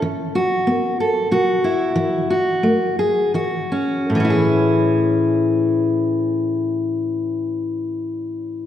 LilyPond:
\new Staff \with { instrumentName = "Steel-string acoustic guitar" } { \time 3/4 \key a \major \tempo 4 = 79 << { r8 fis'4 a'8 fis'8 e'8 | r8 fis'4 gis'8 fis'8 cis'8 | <e cis' e' gis'>2.~ | <e cis' e' gis'>2. | } \\ { e4 b4 b,4 | e4 a4 e4 | a,2.~ | a,2. | } >> }